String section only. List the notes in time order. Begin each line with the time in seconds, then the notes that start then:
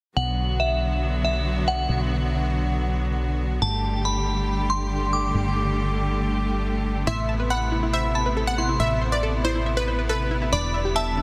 0.17 D3 F#3 B3 F#4
3.62 D3 G3 A3 G4
7.07 C3 B3 E4
10.53 D3 G3